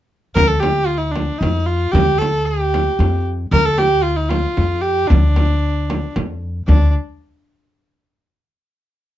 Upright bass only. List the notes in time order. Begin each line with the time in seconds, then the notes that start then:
0.36 D2
1.41 F2
1.93 D2
2.99 F2
3.51 D2
4.57 F2
5.11 D2
6.16 F2
6.68 D2